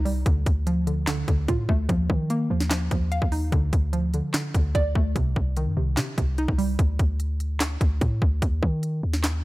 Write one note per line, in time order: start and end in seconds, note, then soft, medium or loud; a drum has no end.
0.00 0.25 C2 loud
0.00 0.26 C3 medium
0.00 0.26 D#4 loud
0.05 0.26 G3 medium
0.05 open hi-hat medium
0.26 0.46 D2 loud
0.26 0.86 D3 medium
0.26 kick loud
0.26 closed hi-hat medium
0.46 1.25 D2 loud
0.46 kick medium
0.46 closed hi-hat medium
0.67 1.69 F3 medium
0.67 closed hi-hat medium
0.87 1.06 D3 medium
0.87 closed hi-hat medium
1.07 1.27 D3 medium
1.07 snare loud
1.07 clap medium
1.07 closed hi-hat medium
1.28 1.48 D2 loud
1.28 1.89 D3 medium
1.28 kick loud
1.28 closed hi-hat medium
1.48 1.68 A2 loud
1.48 1.89 F4 medium
1.48 kick loud
1.48 closed hi-hat medium
1.69 1.88 D2 loud
1.69 1.89 A3 medium
1.69 kick medium
1.89 2.09 D#2 loud
1.89 2.50 F3 medium
1.89 kick loud
1.89 closed hi-hat medium
2.10 2.49 D#3 loud
2.10 kick medium
2.30 3.32 A#3 medium
2.30 closed hi-hat medium
2.50 2.90 D#2 loud
2.50 2.70 F3 medium
2.60 snare medium
2.71 2.90 F3 medium
2.71 snare loud
2.71 clap medium
2.71 closed hi-hat medium
2.91 3.21 D#2 loud
2.91 3.52 F3 medium
2.91 kick loud
2.91 closed hi-hat medium
3.12 3.52 F5 medium
3.12 closed hi-hat medium
3.22 3.51 D#2 loud
3.22 kick loud
3.32 3.52 D#4 medium
3.32 open hi-hat medium
3.52 3.72 D2 loud
3.52 4.13 D3 medium
3.52 kick loud
3.52 closed hi-hat medium
3.73 4.22 D2 loud
3.73 kick medium
3.73 closed hi-hat medium
3.93 4.95 F3 medium
3.93 closed hi-hat medium
4.14 4.33 D3 medium
4.14 closed hi-hat medium
4.34 4.53 D3 medium
4.34 snare loud
4.34 clap medium
4.34 closed hi-hat medium
4.54 4.74 D2 loud
4.54 5.16 D3 medium
4.54 kick loud
4.54 closed hi-hat medium
4.75 4.94 D2 loud
4.75 5.16 D5 loud
4.75 kick loud
4.75 closed hi-hat medium
4.95 5.15 D2 loud
4.95 5.16 A3 medium
4.95 kick medium
5.16 5.35 C2 loud
5.16 5.76 C3 medium
5.16 kick loud
5.16 closed hi-hat medium
5.36 5.68 C2 loud
5.36 kick medium
5.57 6.59 D#3 medium
5.57 closed hi-hat medium
5.67 5.76 G2 loud
5.77 5.99 C2 loud
5.77 5.96 C3 medium
5.97 6.17 C3 medium
5.97 6.17 C3 loud
5.97 snare loud
5.97 clap medium
5.97 closed hi-hat medium
6.18 6.47 C2 loud
6.18 6.79 C3 medium
6.18 kick loud
6.18 closed hi-hat medium
6.38 6.79 D#4 medium
6.38 closed hi-hat medium
6.48 6.78 C2 loud
6.48 kick medium
6.58 6.79 G3 medium
6.58 open hi-hat medium
6.79 6.99 D2 loud
6.79 kick loud
6.79 closed hi-hat medium
6.99 7.78 D2 loud
6.99 kick medium
6.99 closed hi-hat medium
7.20 closed hi-hat medium
7.40 closed hi-hat medium
7.60 snare loud
7.60 clap medium
7.60 closed hi-hat medium
7.81 8.01 D2 loud
7.81 kick loud
7.81 closed hi-hat medium
8.01 8.21 A2 loud
8.01 kick loud
8.01 closed hi-hat medium
8.22 8.41 D2 loud
8.22 kick medium
8.42 8.62 D#2 loud
8.42 kick loud
8.42 closed hi-hat medium
8.63 9.02 D#3 loud
8.63 kick medium
8.83 closed hi-hat medium
9.03 9.43 D#2 loud
9.14 snare medium
9.24 snare loud
9.24 clap medium
9.24 closed hi-hat medium